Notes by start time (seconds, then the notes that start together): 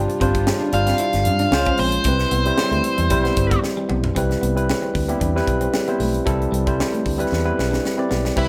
Already playing: C3 G3 D4 F4 C5
0.08 muted clean electric guitar stroke, closed hi-hat
0.20 G1 G3 C4 D4 F4 C5, kick, closed hi-hat
0.35 kick, closed hi-hat
0.47 snare
0.60 D4
0.73 G1 G3 D4 F4 C5 F5, muted clean electric guitar stroke, closed hi-hat
0.87 C4, snare, closed hi-hat
0.98 E4, closed hi-hat
1.13 G1, snare, closed hi-hat
1.25 G2, muted clean electric guitar stroke, closed hi-hat
1.39 D4, closed hi-hat
1.51 C#2 C#3 G#3 C#4 F4 C5, muted clean electric guitar stroke, snare
1.65 C#4, kick, closed hi-hat
1.78 A#1 C4 C5, open hi-hat
1.92 closed hi-hat
2.04 C2 C3 G3 C4 E4 B4, kick, closed hi-hat
2.19 muted clean electric guitar stroke, snare, closed hi-hat
2.31 C2 B3, closed hi-hat
2.46 G3 C4 E4 C5, closed hi-hat
2.58 snare
2.71 D2 A3, closed hi-hat
2.84 muted clean electric guitar stroke, closed hi-hat
2.98 E2 G3, closed hi-hat
3.10 B1 G3 C4 E4 C5, kick, closed hi-hat
3.24 B3, snare, closed hi-hat
3.36 G1, muted clean electric guitar stroke, kick, closed hi-hat
3.51 B3, kick, closed hi-hat
3.62 muted clean electric guitar stroke, snare
3.77 G3
3.89 B1 B3, mid tom
4.04 floor tom
4.15 C2 G3 C4 E4 B4, kick, closed hi-hat
4.30 muted clean electric guitar stroke, snare, closed hi-hat
4.41 C2 B3, closed hi-hat
4.55 G3 C4 E4 B4, closed hi-hat
4.70 snare
4.82 C4
4.94 D2, muted clean electric guitar stroke, kick, open hi-hat
5.09 G3 B3 C4 E4 G4, closed hi-hat
5.20 E2 D4, kick, closed hi-hat
5.35 G3 C4 E4 B4, snare
5.47 B1, muted clean electric guitar stroke, kick, closed hi-hat
5.61 C4, closed hi-hat
5.73 muted clean electric guitar stroke, snare
5.88 G3 B3 C4 E4 C5, closed hi-hat
6.00 B1 A3, open hi-hat
6.14 closed hi-hat
6.25 C2 G3 C4 E4 A4, kick, closed hi-hat
6.41 muted clean electric guitar stroke, closed hi-hat
6.52 C2 G3, closed hi-hat
6.66 G3 C4 E4 C5, kick, closed hi-hat
6.80 snare
6.93 A3, closed hi-hat
7.05 D2, muted clean electric guitar stroke, kick, open hi-hat
7.18 G3 C4 E4 B4, closed hi-hat
7.32 E2, snare
7.45 G3 B3 C4 E4 B4
7.58 B1, muted clean electric guitar stroke, snare
7.71 D4, snare
7.84 muted clean electric guitar stroke, snare
7.97 G3 C4 E4 D5
8.09 B1 B3, snare
8.25 snare
8.36 C2 G3 C4 E4 B4, kick, crash